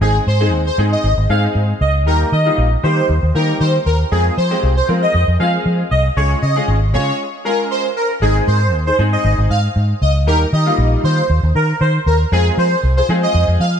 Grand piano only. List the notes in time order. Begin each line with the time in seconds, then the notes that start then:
0.01 G#3 C4 D#4 G#4
0.40 G#3 C4 D#4 G#4
0.78 G#3 C4 D#4 G#4
1.29 G#3 C4 D#4 G#4
2.06 G3 A#3 D#4 G4
2.46 G3 A#3 D#4 F4
2.83 G3 A#3 D#4 G4
3.35 G3 A#3 D#4 G4
4.11 G#3 C4 F4 G#4
4.51 G#3 C4 F4 G4
4.88 G#3 C4 F4 A#4
5.39 G#3 C4 F4 G#4
6.17 G#3 C#4 F4 G#4
6.56 G#3 C#4 F4 G#4
6.94 G#3 C#4 F4 G#4
7.45 G#3 C#4 F4 G#4
8.22 G#3 C4 D#4 G#4
8.86 D#4 G#4
8.98 G#3 C4 D#4 G#4
10.27 G3 A#3 D#4 G4
10.52 D#4 G4
10.66 G3 A#3 D#4 F4
12.32 G#3 C4 F4 G#4
12.97 F4 G#4
13.09 G#3 C4 F4 G#4